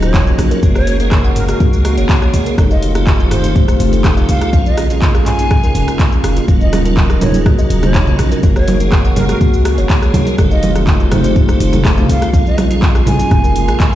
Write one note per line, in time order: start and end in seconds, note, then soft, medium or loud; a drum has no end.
0.00 0.32 D#1 loud
0.00 2.54 C#3 medium
0.00 0.60 F#3 medium
0.00 0.61 F#3 medium
0.00 2.54 A#3 medium
0.00 0.60 C#4 medium
0.00 0.61 D#4 medium
0.00 0.13 D#4 medium
0.00 0.60 F4 loud
0.00 0.39 C#5 medium
0.00 cross-stick medium
0.00 closed hi-hat medium
0.00 cabasa medium
0.14 kick loud
0.14 clap loud
0.14 closed hi-hat soft
0.14 cabasa loud
0.27 cabasa medium
0.38 0.54 A#1 loud
0.38 0.50 D#4 medium
0.38 cross-stick medium
0.38 open hi-hat medium
0.38 cabasa medium
0.51 0.57 A#4 loud
0.51 closed hi-hat medium
0.51 cabasa medium
0.63 1.54 F#1 loud
0.63 0.97 G#3 loud
0.63 2.56 G#3 medium
0.63 0.97 A#3 medium
0.63 0.97 F#4 loud
0.63 2.56 F#4 medium
0.63 kick loud
0.63 closed hi-hat medium
0.63 cabasa medium
0.75 0.86 C#5 medium
0.75 0.93 C#5 loud
0.75 cross-stick medium
0.75 cabasa medium
0.87 0.99 C#5 medium
0.87 open hi-hat medium
0.87 cabasa soft
1.00 2.55 G#3 medium
1.00 2.55 A#3 medium
1.00 2.55 G#4 medium
1.00 1.10 A#4 medium
1.00 closed hi-hat medium
1.00 cabasa medium
1.12 kick loud
1.12 cross-stick medium
1.12 clap loud
1.12 closed hi-hat soft
1.12 cabasa soft
1.24 1.35 F#5 loud
1.24 cabasa medium
1.36 1.44 A#4 medium
1.36 mid tom medium
1.36 open hi-hat medium
1.36 cabasa medium
1.49 1.59 F#4 medium
1.49 1.56 A#4 medium
1.49 cross-stick medium
1.49 closed hi-hat medium
1.49 cabasa medium
1.60 1.99 C#2 loud
1.60 1.67 F#4 medium
1.60 kick loud
1.60 closed hi-hat soft
1.60 mid tom loud
1.60 cabasa medium
1.73 cabasa medium
1.85 1.96 F#4 medium
1.85 cross-stick medium
1.85 open hi-hat loud
1.85 cabasa medium
1.98 2.05 F#1 loud
1.98 2.04 C#5 loud
1.98 closed hi-hat medium
1.98 cabasa medium
2.09 kick loud
2.09 clap loud
2.09 closed hi-hat soft
2.09 cabasa medium
2.22 2.32 C#5 medium
2.22 cross-stick medium
2.22 cabasa soft
2.34 2.42 C#2 loud
2.34 2.45 C#5 medium
2.34 open hi-hat medium
2.34 cabasa medium
2.46 2.57 A#4 medium
2.46 closed hi-hat medium
2.46 cabasa medium
2.58 3.57 F1 loud
2.58 4.51 D#3 medium
2.58 4.51 A3 medium
2.58 2.92 A3 loud
2.58 4.51 C4 medium
2.58 2.92 D#4 medium
2.58 6.44 F4 medium
2.58 2.92 G4 loud
2.58 2.70 A4 loud
2.58 kick loud
2.58 cross-stick loud
2.58 closed hi-hat soft
2.58 cabasa medium
2.71 2.88 D#5 loud
2.71 2.81 F5 loud
2.71 cabasa medium
2.82 open hi-hat medium
2.82 cabasa soft
2.95 4.50 A3 medium
2.95 4.50 D#4 medium
2.95 3.05 F4 medium
2.95 4.50 G4 loud
2.95 cross-stick medium
2.95 closed hi-hat medium
2.95 cabasa medium
3.07 3.14 F4 medium
3.07 kick loud
3.07 clap loud
3.07 closed hi-hat soft
3.07 cabasa soft
3.20 cabasa medium
3.31 3.43 F4 medium
3.31 3.49 C5 medium
3.31 cross-stick medium
3.31 mid tom medium
3.31 open hi-hat medium
3.31 cabasa medium
3.44 3.50 C5 loud
3.44 closed hi-hat medium
3.44 cabasa medium
3.56 3.71 D#1 loud
3.56 kick loud
3.56 closed hi-hat soft
3.56 mid tom medium
3.56 cabasa soft
3.68 3.79 C5 medium
3.68 cross-stick medium
3.68 cabasa medium
3.80 4.22 F1 loud
3.80 3.91 C5 medium
3.80 open hi-hat loud
3.80 cabasa medium
3.93 4.03 A4 medium
3.93 closed hi-hat medium
3.93 cabasa soft
4.04 4.16 A4 loud
4.04 kick loud
4.04 cross-stick medium
4.04 clap loud
4.04 closed hi-hat soft
4.04 cabasa medium
4.17 4.28 F5 loud
4.17 cabasa medium
4.29 4.45 C2 loud
4.29 4.58 F5 medium
4.29 open hi-hat medium
4.29 cabasa loud
4.41 4.53 F4 medium
4.41 cross-stick medium
4.41 closed hi-hat medium
4.41 cabasa medium
4.53 5.52 A#1 loud
4.53 6.46 C#3 medium
4.53 6.46 G#3 medium
4.53 4.87 G#3 medium
4.53 10.34 A#3 medium
4.53 4.60 A#3 medium
4.53 4.87 C#4 medium
4.53 4.87 F4 loud
4.53 kick loud
4.53 closed hi-hat soft
4.53 cabasa medium
4.66 4.83 D#5 loud
4.66 cabasa medium
4.78 4.89 A#3 medium
4.78 cross-stick medium
4.78 open hi-hat medium
4.78 cabasa soft
4.90 6.46 G#3 medium
4.90 6.46 C#4 medium
4.90 4.97 F4 loud
4.90 6.46 G#4 medium
4.90 closed hi-hat medium
4.90 cabasa medium
5.02 kick loud
5.02 clap medium
5.02 closed hi-hat soft
5.02 cabasa soft
5.15 5.25 F4 medium
5.15 cross-stick medium
5.15 cabasa medium
5.26 5.38 F4 medium
5.26 5.95 G#5 loud
5.26 clap soft
5.26 mid tom medium
5.26 open hi-hat medium
5.26 cabasa medium
5.39 5.50 D#4 medium
5.39 closed hi-hat medium
5.39 cabasa medium
5.51 5.67 C#2 medium
5.51 5.63 C#4 loud
5.51 kick loud
5.51 cross-stick loud
5.51 closed hi-hat soft
5.51 mid tom medium
5.51 cabasa medium
5.63 5.74 A#4 loud
5.63 cabasa medium
5.75 5.83 F1 loud
5.75 open hi-hat loud
5.75 cabasa medium
5.88 5.98 A#3 medium
5.88 cross-stick medium
5.88 closed hi-hat medium
5.88 cabasa medium
5.99 6.06 A#3 medium
5.99 kick loud
5.99 clap loud
5.99 open hi-hat medium
5.99 cabasa medium
6.12 cabasa medium
6.24 6.40 F1 medium
6.24 6.35 A#3 medium
6.24 cross-stick loud
6.24 open hi-hat loud
6.24 cabasa medium
6.36 6.43 F4 loud
6.36 closed hi-hat medium
6.36 cabasa medium
6.48 7.47 D#1 loud
6.48 10.34 C#3 medium
6.48 8.41 F#3 medium
6.48 6.82 F#3 medium
6.48 6.82 C#4 medium
6.48 8.41 D#4 loud
6.48 6.55 D#4 medium
6.48 6.82 F4 loud
6.48 kick loud
6.48 closed hi-hat soft
6.48 cabasa loud
6.61 6.78 D#5 loud
6.61 cabasa medium
6.73 6.84 D#4 medium
6.73 cross-stick loud
6.73 open hi-hat medium
6.73 high conga loud
6.73 cabasa medium
6.85 8.41 F#3 medium
6.85 8.41 C#4 medium
6.85 8.41 F4 medium
6.85 6.92 A#4 loud
6.85 closed hi-hat medium
6.85 cabasa medium
6.97 kick loud
6.97 clap loud
6.97 closed hi-hat soft
6.97 cabasa medium
7.10 7.20 A#4 medium
7.10 cross-stick medium
7.10 cabasa medium
7.21 7.33 A#4 medium
7.21 7.39 C#5 medium
7.21 mid tom medium
7.21 open hi-hat medium
7.21 high conga medium
7.21 low conga loud
7.21 cabasa medium
7.34 7.45 G#4 medium
7.34 closed hi-hat medium
7.34 cabasa medium
7.46 7.62 C#2 loud
7.46 7.58 F#4 loud
7.46 kick loud
7.46 cross-stick loud
7.46 closed hi-hat soft
7.46 mid tom medium
7.46 cabasa medium
7.59 7.69 D#5 loud
7.59 cabasa loud
7.70 8.12 D#1 medium
7.70 open hi-hat loud
7.70 cabasa medium
7.83 7.93 D#4 medium
7.83 8.19 C#5 medium
7.83 cross-stick medium
7.83 closed hi-hat medium
7.83 high conga medium
7.83 low conga medium
7.83 cabasa medium
7.94 8.01 D#4 medium
7.94 kick loud
7.94 clap loud
7.94 closed hi-hat soft
7.94 cabasa loud
8.07 low conga loud
8.07 cabasa medium
8.19 8.35 A#1 loud
8.19 8.30 D#4 medium
8.19 cross-stick loud
8.19 open hi-hat loud
8.19 cabasa medium
8.32 8.38 A#4 loud
8.32 closed hi-hat medium
8.32 cabasa medium
8.43 9.34 F#1 loud
8.43 8.77 G#3 medium
8.43 10.37 G#3 medium
8.43 8.77 A#3 medium
8.43 8.77 F#4 loud
8.43 10.37 F#4 medium
8.43 kick loud
8.43 closed hi-hat soft
8.43 cabasa loud
8.56 8.73 C#5 loud
8.56 8.67 C#5 medium
8.56 cross-stick medium
8.56 cabasa medium
8.68 8.79 C#5 medium
8.68 open hi-hat medium
8.68 high conga loud
8.68 cabasa medium
8.80 10.36 G#3 medium
8.80 10.36 A#3 medium
8.80 10.36 G#4 medium
8.80 8.91 A#4 medium
8.80 closed hi-hat medium
8.80 cabasa medium
8.92 9.04 A#4 loud
8.92 kick loud
8.92 cross-stick loud
8.92 clap loud
8.92 closed hi-hat soft
8.92 cabasa medium
9.05 9.15 F#5 medium
9.05 cabasa medium
9.16 9.25 A#4 medium
9.16 mid tom medium
9.16 open hi-hat medium
9.16 high conga medium
9.16 low conga loud
9.16 cabasa loud
9.29 9.40 F#4 medium
9.29 9.37 A#4 medium
9.29 cross-stick medium
9.29 closed hi-hat medium
9.29 cabasa medium
9.41 9.80 C#2 medium
9.41 kick loud
9.41 closed hi-hat soft
9.41 mid tom medium
9.41 cabasa medium
9.54 cabasa loud
9.65 9.77 F#4 medium
9.65 cross-stick loud
9.65 open hi-hat loud
9.65 cabasa medium
9.78 9.85 F#1 loud
9.78 9.84 C#5 loud
9.78 closed hi-hat medium
9.78 cabasa medium
9.90 kick loud
9.90 clap loud
9.90 closed hi-hat soft
9.90 cabasa loud
10.02 10.13 C#5 medium
10.02 cross-stick medium
10.02 cabasa medium
10.14 10.22 C#2 loud
10.14 10.26 C#5 medium
10.14 open hi-hat medium
10.14 high conga loud
10.14 low conga medium
10.14 cabasa loud
10.27 10.38 A#4 medium
10.27 closed hi-hat medium
10.27 cabasa medium
10.38 11.38 F1 loud
10.38 12.32 D#3 medium
10.38 10.73 A3 loud
10.38 12.32 A3 medium
10.38 12.32 C4 medium
10.38 10.73 D#4 medium
10.38 12.32 F4 medium
10.38 10.73 G4 loud
10.38 10.51 A4 loud
10.38 kick loud
10.38 cross-stick loud
10.38 closed hi-hat soft
10.38 cabasa loud
10.51 10.68 D#5 loud
10.51 10.62 F5 loud
10.51 cabasa medium
10.63 open hi-hat medium
10.63 high conga loud
10.63 cabasa medium
10.75 12.31 A3 loud
10.75 12.31 D#4 medium
10.75 10.86 F4 medium
10.75 12.31 G4 loud
10.75 cross-stick medium
10.75 closed hi-hat medium
10.75 cabasa medium
10.87 10.94 F4 medium
10.87 kick loud
10.87 clap loud
10.87 closed hi-hat soft
10.87 cabasa medium
11.00 cabasa medium
11.11 11.23 F4 medium
11.11 11.29 C5 medium
11.11 cross-stick loud
11.11 mid tom medium
11.11 open hi-hat medium
11.11 high conga loud
11.11 low conga loud
11.11 cabasa loud
11.24 11.31 C5 loud
11.24 closed hi-hat medium
11.24 cabasa medium
11.36 11.52 D#1 loud
11.36 kick loud
11.36 closed hi-hat soft
11.36 mid tom loud
11.36 cabasa medium
11.49 11.59 C5 medium
11.49 cross-stick medium
11.49 cabasa loud
11.60 12.02 F1 loud
11.60 11.72 C5 medium
11.60 open hi-hat loud
11.60 cabasa medium
11.73 11.84 A4 medium
11.73 closed hi-hat medium
11.73 high conga medium
11.73 low conga loud
11.73 cabasa medium
11.85 11.97 A4 loud
11.85 kick loud
11.85 cross-stick loud
11.85 clap loud
11.85 closed hi-hat soft
11.85 cabasa loud
11.97 12.08 F5 loud
11.97 low conga loud
11.97 cabasa medium
12.09 12.25 C2 loud
12.09 12.39 F5 loud
12.09 open hi-hat medium
12.09 cabasa loud
12.22 12.33 F4 medium
12.22 cross-stick medium
12.22 closed hi-hat medium
12.22 cabasa medium
12.33 13.24 A#1 loud
12.33 13.95 C#3 medium
12.33 13.95 G#3 medium
12.33 12.68 G#3 loud
12.33 12.40 A#3 medium
12.33 13.95 A#3 medium
12.33 12.68 C#4 medium
12.33 13.95 F4 medium
12.33 12.68 F4 loud
12.33 kick loud
12.33 closed hi-hat soft
12.33 cabasa loud
12.46 12.63 D#5 loud
12.46 cabasa medium
12.58 12.69 A#3 medium
12.58 cross-stick medium
12.58 open hi-hat medium
12.58 high conga loud
12.58 cabasa medium
12.71 13.95 G#3 medium
12.71 13.95 C#4 medium
12.71 12.77 F4 loud
12.71 13.95 G#4 medium
12.71 closed hi-hat medium
12.71 cabasa medium
12.82 kick loud
12.82 clap loud
12.82 closed hi-hat soft
12.82 cabasa medium
12.95 13.06 F4 medium
12.95 cross-stick medium
12.95 cabasa medium
13.06 13.18 F4 medium
13.06 13.75 G#5 loud
13.06 mid tom medium
13.06 open hi-hat medium
13.06 high conga medium
13.06 low conga loud
13.06 cabasa loud
13.19 13.30 D#4 medium
13.19 closed hi-hat medium
13.19 cabasa loud
13.31 13.70 F1 loud
13.31 13.43 C#4 loud
13.31 kick loud
13.31 cross-stick medium
13.31 closed hi-hat soft
13.31 mid tom loud
13.31 cabasa medium
13.44 13.54 A#4 loud
13.44 cabasa loud
13.56 open hi-hat medium
13.56 cabasa medium
13.68 13.76 A#1 loud
13.68 13.79 A#4 medium
13.68 cross-stick medium
13.68 closed hi-hat medium
13.68 cabasa medium
13.80 13.87 G#3 medium
13.80 kick loud
13.80 clap loud
13.80 closed hi-hat soft
13.80 cabasa loud